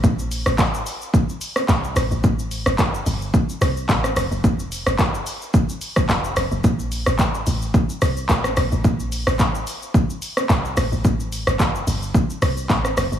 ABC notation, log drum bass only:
X:1
M:4/4
L:1/16
Q:"Swing 16ths" 1/4=109
K:Aphr
V:1 name="Log drum bass" clef=bass
B,,,3 A,,,3 z6 C,,2 A,,, A,,, | A,,,3 G,,,3 G,,,3 z C,,2 A,,,2 F,,, F,,, | F,,,3 G,,,3 z6 F,,,2 F,,, F,,, | B,,,3 A,,,3 A,,,3 z C,,2 A,,,2 B,,, A,,, |
B,,,3 A,,,3 z6 C,,2 A,,, A,,, | A,,,3 G,,,3 G,,,3 z C,,2 A,,,2 F,,, F,,, |]